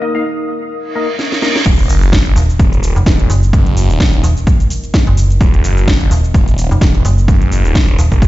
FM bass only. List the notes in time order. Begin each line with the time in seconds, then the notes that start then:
2.36 D#1
2.96 F1
3.30 F#1
4.24 D#1
5.07 F#1
6.11 D#1
6.71 F1
7.05 F#1
7.99 D#1